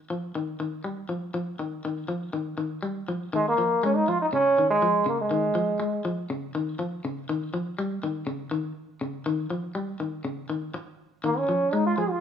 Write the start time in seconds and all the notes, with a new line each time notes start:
0.10 F3
0.35 D#3
0.60 D#3
0.84 G3
1.09 F3
1.34 F3
1.59 D#3
1.85 D#3
2.08 F3
2.33 D#3
2.58 D#3
2.83 G3
3.08 F3
3.33 D#3 G#3
3.48 A#3
3.58 F3
3.83 G#3 C#4
3.96 D#4
4.08 F3 F4
4.22 D#4
4.33 C#3 C#4
4.58 D#3
4.70 G#3
4.82 F3
5.06 C#3 A#3
5.21 G#3
5.31 D#3
5.55 F3
5.80 G#3
6.05 F3
6.30 C#3
6.55 D#3
6.79 F3
7.05 C#3
7.29 D#3
7.54 F3
7.79 G3
8.03 D#3
8.27 C#3
8.51 D#3
9.01 C#3
9.26 D#3
9.50 F3
9.75 G3
10.00 D#3
10.25 C#3
10.50 D#3
10.74 muted clean electric guitar stroke
11.24 D#3 A#3
11.38 C#4
11.49 F3
11.73 G#3 D#4
11.86 F4
11.98 F3 G#4
12.10 F4